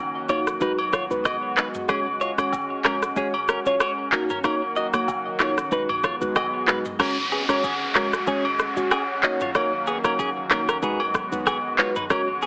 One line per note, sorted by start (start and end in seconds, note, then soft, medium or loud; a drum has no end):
0.00 0.20 F#1 medium
0.00 1.86 D#3 medium
0.00 1.86 F#3 medium
0.00 0.60 A#3 medium
0.00 0.60 C#4 medium
0.00 4.09 F#4 loud
0.29 0.55 A#1 loud
0.29 0.45 A#3 medium
0.29 0.45 D#4 medium
0.29 0.40 F4 medium
0.29 0.45 F#4 medium
0.29 0.46 C#5 medium
0.29 0.39 C#5 medium
0.29 high agogo medium
0.29 shaker medium
0.47 cross-stick medium
0.47 shaker medium
0.61 1.01 B1 loud
0.61 0.77 G#3 medium
0.61 4.09 G#3 medium
0.61 1.88 B3 medium
0.61 0.77 D#4 medium
0.61 0.72 D#4 medium
0.61 0.77 F#4 medium
0.61 0.77 B4 loud
0.61 0.71 B4 medium
0.61 kick medium
0.61 shaker medium
0.79 high agogo medium
0.93 1.04 F4 medium
0.93 1.03 C#5 medium
0.93 kick medium
0.93 cross-stick loud
0.93 shaker medium
1.10 1.36 C#2 loud
1.10 1.24 G#3 medium
1.10 1.24 D#4 medium
1.10 1.24 F#4 medium
1.10 1.24 B4 medium
1.10 shaker medium
1.25 1.36 F#4 medium
1.25 1.35 D#5 medium
1.25 kick loud
1.25 cross-stick loud
1.25 high agogo medium
1.25 shaker medium
1.57 1.67 D#4 medium
1.57 1.67 B4 medium
1.57 clap medium
1.57 shaker medium
1.74 mid tom medium
1.74 shaker medium
1.88 2.28 F#1 loud
1.88 2.05 G#3 medium
1.88 2.05 C#4 medium
1.88 5.68 C#4 medium
1.88 2.00 C#4 medium
1.88 2.05 F#4 medium
1.88 1.99 G#4 loud
1.88 2.05 C#5 loud
1.88 kick loud
1.88 cross-stick loud
1.88 high agogo medium
1.88 shaker medium
2.21 2.32 F4 medium
2.21 2.31 C#5 medium
2.21 shaker soft
2.38 2.75 G#1 loud
2.38 2.51 G#3 medium
2.38 2.51 C#4 medium
2.38 2.52 F#4 medium
2.38 2.52 C#5 medium
2.38 cross-stick medium
2.38 high agogo medium
2.38 shaker medium
2.52 kick medium
2.52 low woodblock medium
2.52 shaker medium
2.84 3.10 A#1 medium
2.84 3.01 G#3 medium
2.84 3.01 C#4 medium
2.84 2.95 C#4 medium
2.84 3.01 F#4 medium
2.84 2.95 A#4 medium
2.84 3.01 C#5 medium
2.84 cross-stick medium
2.84 clap loud
2.84 high agogo medium
2.84 shaker medium
3.02 cross-stick medium
3.02 shaker medium
3.16 3.56 G#1 loud
3.16 3.33 G#3 loud
3.16 3.33 C#4 medium
3.16 3.27 C#4 medium
3.16 3.33 F#4 medium
3.16 3.27 G#4 medium
3.16 3.33 C#5 loud
3.16 kick medium
3.16 shaker medium
3.34 high agogo medium
3.48 3.59 C#4 medium
3.48 3.59 A#4 medium
3.48 cross-stick medium
3.48 shaker medium
3.66 3.78 F#1 medium
3.66 3.79 G#3 medium
3.66 3.79 C#4 medium
3.66 3.75 F4 medium
3.66 3.79 F#4 medium
3.66 3.80 C#5 medium
3.66 3.75 C#5 medium
3.66 shaker medium
3.80 3.91 F#4 medium
3.80 3.91 C#5 medium
3.80 cross-stick loud
3.80 high agogo medium
3.80 shaker medium
4.12 4.38 D#1 loud
4.12 6.97 D#3 medium
4.12 6.97 F#3 medium
4.12 4.28 A#3 medium
4.12 5.70 A#3 medium
4.12 4.23 C#4 medium
4.12 4.29 D#4 medium
4.12 6.97 F#4 loud
4.12 4.29 F#4 medium
4.12 4.22 A#4 medium
4.12 4.29 C#5 medium
4.12 clap medium
4.12 shaker medium
4.30 4.39 C#4 medium
4.30 4.38 A#4 medium
4.30 mid tom medium
4.30 shaker medium
4.44 4.84 D#1 loud
4.44 4.60 A#3 medium
4.44 4.55 C#4 medium
4.44 4.60 D#4 medium
4.44 4.61 F#4 medium
4.44 4.54 A#4 loud
4.44 4.61 C#5 loud
4.44 kick loud
4.44 cross-stick medium
4.44 high agogo medium
4.44 shaker medium
4.76 4.87 F#4 medium
4.76 4.86 D#5 medium
4.76 shaker soft
4.94 5.31 F#1 medium
4.94 5.07 A#3 medium
4.94 5.07 D#4 medium
4.94 5.07 F#4 medium
4.94 5.07 C#5 medium
4.94 cross-stick medium
4.94 high agogo medium
4.94 shaker medium
5.08 kick medium
5.08 low woodblock medium
5.08 shaker medium
5.40 5.66 A#1 medium
5.40 5.56 A#3 medium
5.40 5.56 D#4 medium
5.40 5.51 F4 medium
5.40 5.56 F#4 medium
5.40 5.56 C#5 medium
5.40 5.50 C#5 medium
5.40 cross-stick medium
5.40 clap medium
5.40 high agogo medium
5.40 shaker medium
5.58 cross-stick medium
5.58 shaker medium
5.71 6.11 B1 loud
5.71 5.88 G#3 loud
5.71 6.98 G#3 medium
5.71 6.99 B3 medium
5.71 5.88 D#4 medium
5.71 5.83 D#4 medium
5.71 5.88 F#4 medium
5.71 5.88 B4 loud
5.71 5.82 B4 medium
5.71 kick loud
5.71 shaker medium
5.89 mid tom loud
5.89 high agogo medium
6.04 6.15 F4 medium
6.04 6.14 C#5 medium
6.04 kick medium
6.04 cross-stick medium
6.04 shaker medium
6.21 6.33 C#2 loud
6.21 6.34 G#3 medium
6.21 6.35 D#4 medium
6.21 6.35 F#4 medium
6.21 6.35 B4 medium
6.21 shaker medium
6.36 6.61 B1 medium
6.36 6.47 F#4 medium
6.36 6.46 D#5 medium
6.36 kick loud
6.36 cross-stick loud
6.36 high agogo medium
6.36 low woodblock medium
6.36 shaker medium
6.67 6.93 F1 loud
6.67 6.84 G#3 medium
6.67 6.84 D#4 medium
6.67 6.78 D#4 medium
6.67 6.84 F#4 medium
6.67 6.84 B4 medium
6.67 6.78 B4 medium
6.67 clap medium
6.67 mid tom medium
6.67 shaker medium
6.85 mid tom medium
6.85 shaker medium
6.99 7.39 F#1 loud
6.99 7.15 G#3 loud
6.99 9.21 G#3 medium
6.99 7.16 C#4 medium
6.99 10.79 C#4 medium
6.99 7.10 C#4 medium
6.99 7.16 F#4 medium
6.99 10.79 F#4 loud
6.99 7.10 A#4 loud
6.99 7.16 C#5 loud
6.99 kick loud
6.99 cross-stick loud
6.99 crash loud
6.99 downlifter medium
6.99 high agogo medium
6.99 shaker medium
7.32 7.42 B3 medium
7.32 7.42 G#4 medium
7.32 shaker soft
7.49 7.86 G#1 medium
7.49 7.62 G#3 medium
7.49 7.62 C#4 medium
7.49 7.58 C#4 medium
7.49 7.62 F#4 medium
7.49 7.58 A#4 medium
7.49 7.62 C#5 medium
7.49 cross-stick medium
7.49 high agogo medium
7.49 shaker medium
7.64 7.74 C#4 medium
7.64 7.74 G#4 medium
7.64 kick medium
7.64 shaker medium
7.95 8.21 A#1 medium
7.95 8.11 G#3 medium
7.95 8.11 C#4 medium
7.95 8.06 C#4 medium
7.95 8.11 F#4 medium
7.95 8.06 A#4 medium
7.95 8.12 C#5 medium
7.95 cross-stick loud
7.95 clap loud
7.95 high agogo medium
7.95 shaker medium
8.13 cross-stick loud
8.13 shaker medium
8.27 8.67 G#1 medium
8.27 8.43 G#3 loud
8.27 8.43 C#4 medium
8.27 8.46 C#4 medium
8.27 8.43 F#4 medium
8.27 8.45 G#4 medium
8.27 8.43 C#5 loud
8.27 kick loud
8.27 shaker medium
8.45 high agogo medium
8.59 cross-stick medium
8.59 shaker medium
8.76 8.88 F#1 medium
8.76 8.90 G#3 medium
8.76 8.90 C#4 medium
8.76 8.90 F#4 medium
8.76 8.90 C#5 medium
8.76 shaker medium
8.91 9.02 C#4 medium
8.91 9.02 G#4 medium
8.91 cross-stick loud
8.91 high agogo medium
8.91 low woodblock medium
8.91 shaker medium
9.23 9.49 D#1 loud
9.23 12.08 D#3 medium
9.23 12.08 F#3 medium
9.23 9.39 A#3 medium
9.23 10.81 A#3 medium
9.23 9.39 D#4 medium
9.23 9.39 F#4 medium
9.23 9.34 F#4 medium
9.23 9.39 C#5 medium
9.23 9.34 D#5 medium
9.23 clap medium
9.23 shaker medium
9.41 9.50 F4 medium
9.41 9.49 C#5 medium
9.41 mid tom medium
9.41 shaker medium
9.55 9.94 D#1 loud
9.55 9.71 A#3 medium
9.55 9.66 C#4 medium
9.55 9.71 D#4 medium
9.55 9.71 F#4 medium
9.55 9.65 A#4 medium
9.55 9.71 C#5 loud
9.55 kick loud
9.55 cross-stick loud
9.55 high agogo medium
9.55 shaker medium
9.87 9.98 B3 medium
9.87 9.97 G#4 medium
9.87 shaker medium
10.04 10.41 F#1 loud
10.04 10.18 A#3 medium
10.04 10.13 C#4 medium
10.04 10.18 D#4 medium
10.04 10.18 F#4 medium
10.04 10.13 A#4 medium
10.04 10.18 C#5 medium
10.04 cross-stick medium
10.04 high agogo medium
10.04 shaker medium
10.19 10.29 C#4 medium
10.19 10.29 G#4 medium
10.19 kick medium
10.19 shaker medium
10.50 10.76 A#1 loud
10.50 10.67 A#3 medium
10.50 10.61 C#4 medium
10.50 10.67 D#4 medium
10.50 10.67 F#4 medium
10.50 10.61 A#4 medium
10.50 10.67 C#5 medium
10.50 cross-stick loud
10.50 clap loud
10.50 high agogo medium
10.50 shaker medium
10.69 10.77 C#4 medium
10.69 10.77 A#4 medium
10.69 cross-stick loud
10.69 shaker medium
10.82 11.22 B1 loud
10.82 10.99 G#3 medium
10.82 12.46 G#3 medium
10.82 12.09 B3 medium
10.82 11.01 B3 medium
10.82 10.99 D#4 medium
10.82 12.46 F#4 loud
10.82 10.99 F#4 medium
10.82 11.01 G#4 medium
10.82 10.99 B4 loud
10.82 kick loud
10.82 shaker medium
11.00 high agogo medium
11.14 kick loud
11.14 cross-stick medium
11.14 shaker medium
11.32 11.58 C#2 loud
11.32 11.45 G#3 medium
11.32 11.45 D#4 medium
11.32 11.45 F#4 medium
11.32 11.45 B4 medium
11.32 shaker medium
11.47 11.57 B3 medium
11.47 11.57 G#4 medium
11.47 kick loud
11.47 cross-stick loud
11.47 high agogo medium
11.47 low woodblock medium
11.47 shaker medium
11.78 11.94 G#3 medium
11.78 11.94 D#4 medium
11.78 11.89 F4 medium
11.78 11.95 F#4 medium
11.78 11.95 B4 medium
11.78 11.88 C#5 medium
11.78 clap medium
11.78 shaker medium
11.96 12.05 D#4 medium
11.96 12.04 B4 medium
11.96 mid tom medium
11.96 shaker medium
12.10 12.46 F#1 loud
12.10 12.26 G#3 medium
12.10 12.26 C#4 medium
12.10 12.46 C#4 medium
12.10 12.21 C#4 medium
12.10 12.26 F#4 medium
12.10 12.20 A#4 loud
12.10 12.27 C#5 loud
12.10 kick loud
12.10 cross-stick loud
12.10 high agogo loud
12.10 shaker medium
12.42 12.46 B3 medium
12.42 12.46 G#4 medium
12.42 shaker soft